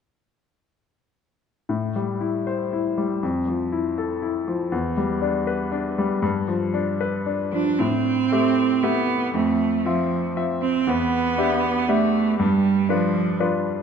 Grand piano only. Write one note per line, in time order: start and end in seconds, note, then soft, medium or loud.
1.69 3.18 A2 soft
1.96 2.37 G3 soft
2.21 2.62 E4 soft
2.47 2.87 C5 soft
2.73 3.13 E4 soft
2.98 3.23 G3 soft
3.23 4.69 F2 soft
3.48 3.88 F3 soft
3.72 4.13 E4 soft
3.98 4.38 A4 soft
4.22 4.62 E4 soft
4.47 4.72 F3 soft
4.72 6.19 E2 soft
4.97 5.38 G3 soft
5.22 5.62 D4 soft
5.47 5.88 B4 soft
5.72 6.13 D4 soft
5.98 6.24 G3 soft
6.22 7.76 G2 soft
6.48 6.90 F3 soft
6.74 7.16 D4 soft
7.01 7.43 B4 soft
7.26 7.70 D4 soft
7.52 7.80 F3 soft
7.80 8.30 A2 soft
8.32 8.79 A3 soft
8.32 8.79 G4 soft
8.32 8.79 E5 soft
8.83 9.30 A3 soft
8.83 9.30 G4 soft
8.83 9.30 E5 soft
9.34 9.84 F2 soft
9.86 10.32 C4 soft
9.86 10.33 F4 soft
9.86 10.33 E5 soft
10.36 10.83 C4 soft
10.36 10.84 F4 soft
10.36 10.84 E5 soft
10.87 11.36 E2 soft
11.38 11.85 D4 soft
11.38 11.85 G4 soft
11.38 11.85 E5 soft
11.88 12.35 D4 soft
11.88 12.35 G4 soft
11.88 12.36 E5 soft
12.39 12.88 G2 soft
12.89 13.35 D4 soft
12.89 13.36 F4 soft
12.89 13.36 B4 soft
13.40 13.82 D4 soft
13.40 13.82 F4 soft
13.40 13.82 B4 soft